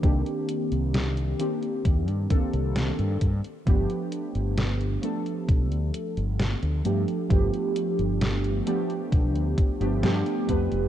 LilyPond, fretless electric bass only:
\new Staff \with { instrumentName = "Fretless electric bass" } { \clef bass \time 4/4 \key g \minor \tempo 4 = 66 c,16 r8 c,8. r8 ees,16 g,16 r16 c,8 g,16 g,16 r16 | g,,16 r8 g,,8. r8 b,,16 d,16 r16 g,,8 d,16 g,16 r16 | g,,16 r8 g,,8. r8 b,,16 d,16 r16 g,,16 g,16 r16 f,16 f,,16 | }